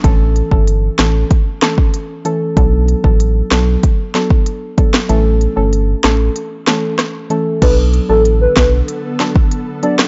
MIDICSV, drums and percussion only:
0, 0, Header, 1, 2, 480
1, 0, Start_track
1, 0, Key_signature, 2, "minor"
1, 0, Tempo, 631579
1, 31, Time_signature, 4, 2, 24, 8
1, 7659, End_track
2, 0, Start_track
2, 0, Title_t, "Drums"
2, 31, Note_on_c, 9, 36, 115
2, 31, Note_on_c, 9, 42, 74
2, 107, Note_off_c, 9, 36, 0
2, 107, Note_off_c, 9, 42, 0
2, 273, Note_on_c, 9, 42, 53
2, 349, Note_off_c, 9, 42, 0
2, 391, Note_on_c, 9, 36, 84
2, 467, Note_off_c, 9, 36, 0
2, 513, Note_on_c, 9, 42, 64
2, 589, Note_off_c, 9, 42, 0
2, 751, Note_on_c, 9, 38, 118
2, 753, Note_on_c, 9, 37, 93
2, 754, Note_on_c, 9, 42, 56
2, 827, Note_off_c, 9, 38, 0
2, 829, Note_off_c, 9, 37, 0
2, 830, Note_off_c, 9, 42, 0
2, 992, Note_on_c, 9, 42, 76
2, 994, Note_on_c, 9, 36, 100
2, 1068, Note_off_c, 9, 42, 0
2, 1070, Note_off_c, 9, 36, 0
2, 1233, Note_on_c, 9, 38, 116
2, 1233, Note_on_c, 9, 42, 52
2, 1235, Note_on_c, 9, 37, 89
2, 1309, Note_off_c, 9, 38, 0
2, 1309, Note_off_c, 9, 42, 0
2, 1311, Note_off_c, 9, 37, 0
2, 1352, Note_on_c, 9, 36, 100
2, 1428, Note_off_c, 9, 36, 0
2, 1473, Note_on_c, 9, 42, 80
2, 1549, Note_off_c, 9, 42, 0
2, 1711, Note_on_c, 9, 42, 59
2, 1787, Note_off_c, 9, 42, 0
2, 1951, Note_on_c, 9, 36, 115
2, 1952, Note_on_c, 9, 42, 75
2, 2027, Note_off_c, 9, 36, 0
2, 2028, Note_off_c, 9, 42, 0
2, 2192, Note_on_c, 9, 42, 50
2, 2268, Note_off_c, 9, 42, 0
2, 2311, Note_on_c, 9, 36, 85
2, 2387, Note_off_c, 9, 36, 0
2, 2432, Note_on_c, 9, 42, 69
2, 2508, Note_off_c, 9, 42, 0
2, 2670, Note_on_c, 9, 38, 112
2, 2672, Note_on_c, 9, 37, 96
2, 2674, Note_on_c, 9, 42, 55
2, 2746, Note_off_c, 9, 38, 0
2, 2748, Note_off_c, 9, 37, 0
2, 2750, Note_off_c, 9, 42, 0
2, 2913, Note_on_c, 9, 42, 80
2, 2914, Note_on_c, 9, 36, 106
2, 2989, Note_off_c, 9, 42, 0
2, 2990, Note_off_c, 9, 36, 0
2, 3152, Note_on_c, 9, 42, 54
2, 3153, Note_on_c, 9, 38, 68
2, 3228, Note_off_c, 9, 42, 0
2, 3229, Note_off_c, 9, 38, 0
2, 3271, Note_on_c, 9, 36, 96
2, 3347, Note_off_c, 9, 36, 0
2, 3392, Note_on_c, 9, 42, 80
2, 3468, Note_off_c, 9, 42, 0
2, 3631, Note_on_c, 9, 42, 55
2, 3632, Note_on_c, 9, 36, 95
2, 3707, Note_off_c, 9, 42, 0
2, 3708, Note_off_c, 9, 36, 0
2, 3754, Note_on_c, 9, 38, 109
2, 3755, Note_on_c, 9, 37, 87
2, 3830, Note_off_c, 9, 38, 0
2, 3831, Note_off_c, 9, 37, 0
2, 3871, Note_on_c, 9, 42, 78
2, 3947, Note_off_c, 9, 42, 0
2, 4112, Note_on_c, 9, 42, 51
2, 4188, Note_off_c, 9, 42, 0
2, 4353, Note_on_c, 9, 42, 63
2, 4429, Note_off_c, 9, 42, 0
2, 4590, Note_on_c, 9, 38, 118
2, 4592, Note_on_c, 9, 37, 96
2, 4594, Note_on_c, 9, 42, 55
2, 4666, Note_off_c, 9, 38, 0
2, 4668, Note_off_c, 9, 37, 0
2, 4670, Note_off_c, 9, 42, 0
2, 4832, Note_on_c, 9, 42, 79
2, 4908, Note_off_c, 9, 42, 0
2, 5071, Note_on_c, 9, 38, 108
2, 5071, Note_on_c, 9, 42, 55
2, 5073, Note_on_c, 9, 37, 92
2, 5147, Note_off_c, 9, 38, 0
2, 5147, Note_off_c, 9, 42, 0
2, 5149, Note_off_c, 9, 37, 0
2, 5310, Note_on_c, 9, 37, 93
2, 5310, Note_on_c, 9, 38, 67
2, 5311, Note_on_c, 9, 42, 79
2, 5386, Note_off_c, 9, 37, 0
2, 5386, Note_off_c, 9, 38, 0
2, 5387, Note_off_c, 9, 42, 0
2, 5550, Note_on_c, 9, 42, 57
2, 5626, Note_off_c, 9, 42, 0
2, 5791, Note_on_c, 9, 36, 114
2, 5791, Note_on_c, 9, 42, 84
2, 5791, Note_on_c, 9, 49, 97
2, 5867, Note_off_c, 9, 36, 0
2, 5867, Note_off_c, 9, 42, 0
2, 5867, Note_off_c, 9, 49, 0
2, 6031, Note_on_c, 9, 42, 53
2, 6107, Note_off_c, 9, 42, 0
2, 6272, Note_on_c, 9, 42, 66
2, 6348, Note_off_c, 9, 42, 0
2, 6510, Note_on_c, 9, 38, 122
2, 6511, Note_on_c, 9, 36, 88
2, 6511, Note_on_c, 9, 37, 97
2, 6513, Note_on_c, 9, 42, 58
2, 6586, Note_off_c, 9, 38, 0
2, 6587, Note_off_c, 9, 36, 0
2, 6587, Note_off_c, 9, 37, 0
2, 6589, Note_off_c, 9, 42, 0
2, 6751, Note_on_c, 9, 42, 78
2, 6827, Note_off_c, 9, 42, 0
2, 6991, Note_on_c, 9, 38, 68
2, 6991, Note_on_c, 9, 42, 55
2, 7067, Note_off_c, 9, 38, 0
2, 7067, Note_off_c, 9, 42, 0
2, 7110, Note_on_c, 9, 36, 101
2, 7186, Note_off_c, 9, 36, 0
2, 7230, Note_on_c, 9, 42, 77
2, 7306, Note_off_c, 9, 42, 0
2, 7470, Note_on_c, 9, 42, 57
2, 7546, Note_off_c, 9, 42, 0
2, 7592, Note_on_c, 9, 38, 112
2, 7594, Note_on_c, 9, 37, 92
2, 7659, Note_off_c, 9, 37, 0
2, 7659, Note_off_c, 9, 38, 0
2, 7659, End_track
0, 0, End_of_file